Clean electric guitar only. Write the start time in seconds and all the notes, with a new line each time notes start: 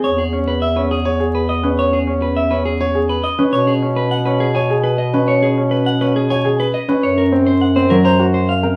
0.04 C#5
0.18 G#4
0.48 B4
0.62 E5
0.76 B4
0.91 G#4
1.35 B4
1.49 D#5
1.79 C#5
1.93 G#4
2.22 B4
2.37 E5
2.51 B4
2.65 G#4
3.09 B4
3.24 D#5
3.53 C#5
3.67 G#4
3.96 B4
4.11 F#5
4.25 B4
4.40 G#4
4.55 G#5
4.83 B4
4.98 D#5
5.28 C#5
5.43 G#4
5.71 B4
5.86 F#5
6.01 B4
6.16 G#4
6.30 G#5
6.60 B4
6.74 D#5
7.03 C#5
7.18 A#4
7.47 C5
7.61 F#5
7.76 C5
7.90 A#4
8.05 A#5
8.34 C5
8.49 F5